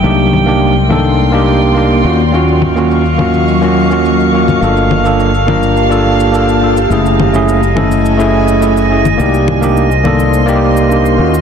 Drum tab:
SH |xx-xxx-xxx-xxx-x|xx-xxx-xxx-xxx-x|xx-xxx-xxx-xxx-x|xx-xxx-xxx-xxx-x|
CG |--O---O---------|--O---O--------O|--O---O---------|--O---O--------O|

SH |xx-xxx-xxx-xxx-x|
CG |--O---O---------|